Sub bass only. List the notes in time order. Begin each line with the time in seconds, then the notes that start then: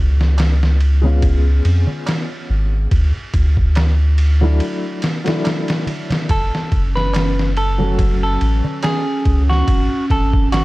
Already playing: C#2
1.65 F2
2.50 G#1
2.92 D2
3.34 D2
6.30 F#1
6.72 F#1
8.41 A1
9.26 C#2
9.68 G#1
10.10 G#1